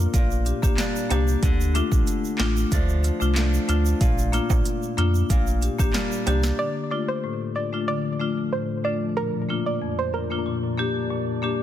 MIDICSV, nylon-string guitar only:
0, 0, Header, 1, 2, 480
1, 0, Start_track
1, 0, Key_signature, -1, "minor"
1, 0, Tempo, 645161
1, 1062, Time_signature, 4, 2, 24, 8
1, 8652, End_track
2, 0, Start_track
2, 0, Title_t, "Nylon-string guitar"
2, 0, Program_c, 0, 24
2, 0, Note_on_c, 0, 46, 86
2, 0, Note_on_c, 0, 58, 63
2, 0, Note_on_c, 0, 62, 67
2, 94, Note_off_c, 0, 46, 0
2, 103, Note_on_c, 0, 46, 93
2, 154, Note_off_c, 0, 58, 0
2, 584, Note_on_c, 0, 55, 64
2, 588, Note_on_c, 0, 58, 66
2, 590, Note_off_c, 0, 62, 0
2, 593, Note_on_c, 0, 62, 72
2, 820, Note_off_c, 0, 62, 0
2, 823, Note_on_c, 0, 62, 68
2, 1062, Note_on_c, 0, 50, 88
2, 1113, Note_off_c, 0, 46, 0
2, 1114, Note_off_c, 0, 55, 0
2, 1116, Note_off_c, 0, 58, 0
2, 1302, Note_on_c, 0, 57, 64
2, 2019, Note_off_c, 0, 57, 0
2, 2023, Note_on_c, 0, 53, 66
2, 2028, Note_off_c, 0, 62, 0
2, 2028, Note_on_c, 0, 57, 68
2, 2031, Note_on_c, 0, 62, 71
2, 2494, Note_off_c, 0, 53, 0
2, 2498, Note_off_c, 0, 57, 0
2, 2503, Note_on_c, 0, 53, 69
2, 2507, Note_on_c, 0, 57, 66
2, 2509, Note_off_c, 0, 62, 0
2, 2512, Note_on_c, 0, 62, 75
2, 2740, Note_off_c, 0, 62, 0
2, 2743, Note_on_c, 0, 62, 68
2, 2981, Note_on_c, 0, 46, 92
2, 3033, Note_off_c, 0, 53, 0
2, 3035, Note_off_c, 0, 57, 0
2, 3223, Note_on_c, 0, 58, 63
2, 3666, Note_off_c, 0, 50, 0
2, 3934, Note_off_c, 0, 46, 0
2, 3943, Note_on_c, 0, 46, 83
2, 3994, Note_off_c, 0, 58, 0
2, 4423, Note_on_c, 0, 55, 65
2, 4428, Note_on_c, 0, 58, 67
2, 4429, Note_off_c, 0, 62, 0
2, 4432, Note_on_c, 0, 62, 71
2, 4661, Note_off_c, 0, 62, 0
2, 4664, Note_on_c, 0, 62, 67
2, 4953, Note_off_c, 0, 46, 0
2, 4953, Note_off_c, 0, 55, 0
2, 4956, Note_off_c, 0, 58, 0
2, 5326, Note_off_c, 0, 62, 0
2, 8652, End_track
0, 0, End_of_file